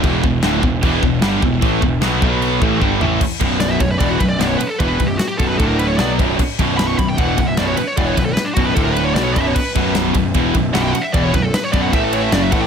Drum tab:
CC |x-x-x-x-|x-x-x---|x-------|--------|
RD |--------|--------|-xxxxxxx|xxxxxxxx|
SD |--o---o-|--o-----|--o---o-|--o---o-|
FT |--------|-------o|--------|--------|
BD |oo-ooo-o|oo-o-oo-|oo-ooo--|oo-oo--o|

CC |x-------|--------|x-------|--------|
RD |-xxxxxxx|xxxxxxxx|-xxxxxxx|xxxxxxxx|
SD |--o---o-|--o---o-|--o---o-|--o---o-|
FT |--------|--------|--------|--------|
BD |oo-ooo--|oo-oo--o|oo-ooo--|oo-oo--o|